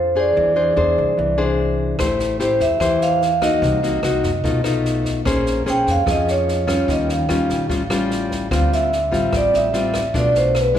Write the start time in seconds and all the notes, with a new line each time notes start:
Already playing: F2 F3 C5
0.16 D4 G#4 C5
0.20 D5
0.36 E2 E3
0.56 D4 G#4 C5
0.77 E2 D4 G#4 C5
0.98 C2
1.17 C2 E3
1.38 D4 G#4 C5
1.99 A1 A3 E4 G4 C5, kick, cross-stick, snare
2.19 snare
2.39 A1 E4 G4 C5, snare
2.60 E2 E5, kick, snare
2.80 E2 E3 E4 G4 C5, kick, cross-stick, snare
3.01 F5, snare
3.21 snare
3.42 A#3 D#4 F#4 D#5, kick, cross-stick, snare
3.62 C2 C3, kick, snare
3.83 A#3 D#4 F#4, snare
4.03 C2 A#3 D#4 F#4, cross-stick, snare
4.23 F#2, kick, snare
4.44 B1 B2 A3 D#4 F4, kick, snare
4.64 A3 D#4 F4, cross-stick, snare
4.85 snare
5.05 kick, snare
5.25 A#1 A#3 C#4 G#4 C5, kick, cross-stick, snare
5.46 snare
5.66 A#1 C#4 G#4 C5 G5, snare
5.87 F2, kick, snare
5.91 F5
6.06 F2 F3 C#4 G#4, kick, cross-stick, snare
6.11 D#5
6.28 C#5, snare
6.48 snare
6.67 G3 C#4 F4, kick, cross-stick, snare
6.88 D#2 D#3 D#5, kick, snare
7.09 F5, snare
7.29 D#2 G3 C#4 F4, cross-stick, snare
7.49 A#1, kick, snare
7.69 A1 A2 G3 C#4 F4, kick, snare
7.90 G3 C#4 F4, cross-stick, snare
8.10 snare
8.31 kick, snare
8.51 D2 D3 G3 C4 F4 F5, kick, cross-stick, snare
8.72 E5, snare
8.92 snare
9.12 A1 G3 C4 F4, kick, snare
9.32 A1 A2, kick, cross-stick, snare
9.36 D5
9.54 A1 E5, snare
9.73 G3 C4 F4, snare
9.94 kick, cross-stick, snare
10.14 B1 B2 A3 D4 F4 D5, kick, snare
10.35 C5, snare
10.55 B4, cross-stick, snare
10.75 F2 G#3 D4 E4, kick, snare